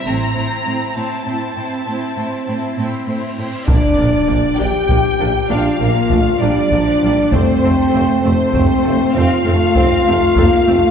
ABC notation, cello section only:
X:1
M:12/8
L:1/8
Q:3/8=66
K:Bblyd
V:1 name="Cello section" clef=bass
A,, A,, A,, A,, A,, A,, A,, A,, A,, A,, A,, A,, | z6 D B, A, G, F, G, | A,3 A,3 C A, C A, B, A, |]